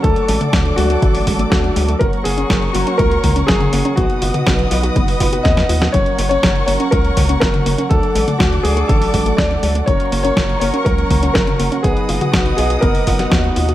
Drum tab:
HH |xxoxxxoxxooxxxox|xxoxxxoxxxoxxxox|xxoxxxoxxooxxxox|xxoxxxoxxxoxxxox|
SD |----o-------o---|----o-------o---|----o-------oo-o|----o-------o---|
T1 |---o------------|----------o--o--|---o------------|----------o--o--|
BD |o---o---o-o-o---|o---o---o-o-o---|o---o---o-o-o---|o---o---o-o-o---|

HH |xxoxxxoxxooxxxox|xxoxxxoxxxoxxxox|xxoxxxoxxooxxxox|
SD |----o-------o---|----o-------o---|----o------oo---|
T1 |---o------------|----------o--o--|---o------------|
BD |o---o---o-o-o---|o---o---o-o-o---|o---o---o-o-o---|